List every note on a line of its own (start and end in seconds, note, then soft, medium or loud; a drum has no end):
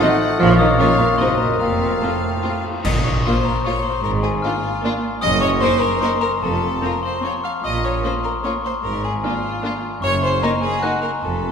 0.00 0.41 A3 medium
0.00 0.24 D#4 medium
0.00 0.23 C5 loud
0.00 0.06 D#5 medium
0.00 0.09 D#5 medium
0.00 0.39 F#5 medium
0.00 0.18 D#6 loud
0.38 0.73 A#1 loud
0.38 0.58 F3 loud
0.38 1.44 A#3 medium
0.38 0.57 F4 loud
0.38 1.22 F4 medium
0.38 1.22 C#5 medium
0.38 0.80 C#5 medium
0.38 0.46 F5 loud
0.38 0.58 F6 loud
0.58 0.67 D#3 medium
0.58 0.68 D#4 medium
0.58 0.79 D#5 loud
0.58 0.78 D#6 loud
0.79 0.87 C#3 medium
0.79 0.87 A#3 medium
0.79 0.88 C#4 loud
0.79 0.87 F4 medium
0.79 0.99 C#5 loud
0.79 0.88 C#5 medium
0.79 1.19 F5 medium
0.79 0.98 C#6 loud
0.98 1.07 A#2 medium
0.98 1.09 A#3 medium
0.98 1.05 A#4 medium
0.98 1.18 A#5 loud
1.18 1.54 F#1 medium
1.18 1.40 C3 medium
1.18 1.27 A#3 medium
1.18 1.29 C4 medium
1.18 1.27 D#4 medium
1.18 1.64 F#4 medium
1.18 1.28 A#4 medium
1.18 1.26 C5 medium
1.18 1.61 D#5 medium
1.18 1.63 D#5 medium
1.18 1.38 C6 loud
1.38 1.59 A#2 medium
1.38 1.60 A#3 medium
1.38 1.60 A#4 medium
1.38 1.58 A#5 medium
1.60 1.96 F1 medium
1.60 2.02 A#2 medium
1.60 2.02 A#3 medium
1.60 2.63 C4 medium
1.60 2.65 F4 medium
1.60 2.02 A#4 medium
1.60 2.62 F5 medium
1.60 2.65 F5 medium
1.60 1.99 A#5 medium
2.02 2.63 A2 medium
2.02 2.63 A3 medium
2.02 2.10 C4 medium
2.02 2.10 F4 medium
2.02 2.11 F4 medium
2.02 2.65 A4 medium
2.02 2.60 A5 medium
2.43 2.52 C4 medium
2.43 2.51 F4 medium
2.43 2.52 F4 medium
2.84 3.19 A#1 medium
2.84 3.19 A#2 medium
2.84 2.92 D#5 loud
2.84 3.04 D#6 medium
2.84 concert bass drum medium
2.84 crash medium
3.04 3.13 C#5 medium
3.04 3.24 C#6 medium
3.25 3.34 A#3 medium
3.25 3.34 F4 medium
3.25 3.45 C5 medium
3.25 3.44 C6 loud
3.45 3.65 A#4 medium
3.45 3.64 A#5 loud
3.65 3.74 A#3 medium
3.65 3.73 F4 medium
3.65 3.74 F4 medium
3.65 3.84 C#5 medium
3.65 3.83 C#6 loud
3.83 4.04 C5 medium
3.83 4.02 C6 loud
4.03 4.38 G#1 medium
4.03 4.37 G#2 medium
4.03 4.11 A#4 loud
4.03 4.22 A#5 medium
4.23 4.31 G#4 medium
4.23 4.42 G#5 loud
4.42 4.52 A#3 medium
4.42 4.53 D4 medium
4.42 5.01 F4 medium
4.42 4.53 F4 medium
4.42 4.98 F6 medium
4.83 4.92 A#3 medium
4.83 4.92 D4 medium
4.83 4.93 F4 medium
5.21 5.56 F#1 loud
5.21 5.56 F#2 loud
5.21 5.41 D#5 loud
5.21 5.40 D#6 loud
5.41 5.49 C#5 loud
5.41 5.60 C#6 loud
5.60 5.70 A#3 medium
5.60 5.70 D#4 medium
5.60 5.72 A#4 medium
5.60 5.80 C5 loud
5.60 5.80 C6 loud
5.81 6.01 A#4 loud
5.81 6.00 A#5 loud
6.01 6.09 A#3 medium
6.01 6.10 D#4 medium
6.01 6.11 A#4 medium
6.01 6.09 C5 loud
6.01 6.20 C6 loud
6.21 6.30 A#4 loud
6.21 6.40 A#5 loud
6.43 6.76 F1 medium
6.43 6.76 F2 medium
6.43 6.82 A4 loud
6.43 6.80 A5 loud
6.82 6.90 C4 medium
6.82 6.92 F4 medium
6.82 7.04 A#4 medium
6.82 7.01 A#5 medium
7.03 7.23 C5 medium
7.03 7.22 C6 medium
7.22 7.30 C4 medium
7.22 7.32 F4 medium
7.22 7.32 C#5 medium
7.22 7.42 C#6 medium
7.44 7.52 F5 medium
7.44 7.62 F6 medium
7.64 7.97 A#1 medium
7.64 7.97 A#2 medium
7.64 7.84 D#5 loud
7.64 7.82 D#6 medium
7.84 8.04 C#5 medium
7.84 8.03 C#6 medium
8.04 8.12 A#3 medium
8.04 8.12 C#4 medium
8.04 8.13 F4 medium
8.04 8.12 C5 medium
8.04 8.23 C6 medium
8.24 8.32 A#4 medium
8.24 8.43 A#5 medium
8.44 8.52 A#3 medium
8.44 8.52 C#4 medium
8.44 8.53 F4 medium
8.44 8.53 C#5 medium
8.44 8.63 C#6 loud
8.65 8.73 C5 medium
8.65 8.83 C6 medium
8.83 9.17 G#1 medium
8.83 9.17 G#2 medium
8.83 9.03 A#4 medium
8.83 9.03 A#5 medium
9.04 9.12 G#4 medium
9.04 9.23 G#5 loud
9.24 9.32 A#3 medium
9.24 9.32 D4 medium
9.24 9.82 F4 medium
9.24 9.34 F4 medium
9.24 9.79 F6 medium
9.62 9.70 A#3 medium
9.62 9.70 D4 medium
9.62 9.73 F4 medium
10.02 10.35 F#1 medium
10.02 10.35 F#2 loud
10.02 10.21 C#5 loud
10.02 10.21 C#6 loud
10.23 10.42 C5 medium
10.23 10.41 C6 loud
10.42 10.50 A#3 medium
10.42 10.50 D#4 medium
10.42 10.50 A#4 loud
10.42 10.61 A#5 loud
10.62 10.82 G#4 loud
10.62 10.80 G#5 loud
10.82 10.90 A#3 medium
10.82 10.90 D#4 medium
10.82 10.91 D#4 medium
10.82 11.02 F#4 medium
10.82 11.01 F#6 loud
11.02 11.10 A#4 medium
11.02 11.22 A#5 medium
11.21 11.52 F1 medium
11.21 11.52 F2 medium
11.21 11.52 A4 medium
11.21 11.52 A5 medium